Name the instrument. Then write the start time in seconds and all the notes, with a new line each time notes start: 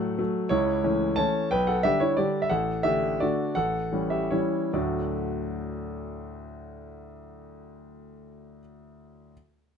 grand piano
Already playing: A2 F#3 A3 A4 F#5
0.19 F#3 A3
0.49 C#2 E4 C#5
0.83 E3 A3 C#4
1.16 E3 A3 C#4 C#5 A5
1.51 B1 B4 G5
1.67 A4 F#5
1.83 D3 G3 D4 G4 E5
2.00 E4 C#5
2.17 D3 G3 D4 G4 D5
2.42 E5
2.49 A1 A4 F#5
2.83 D3 A3 D4 G4 E5
3.20 D3 A3 D4 F#4 D5
3.55 A1 A4 F#5
3.92 E3 G3 C#4
4.10 G4 E5
4.31 E3 G3 C#4 E4 C#5
4.73 D2 A2 F#3 A3 D4 F#4 D5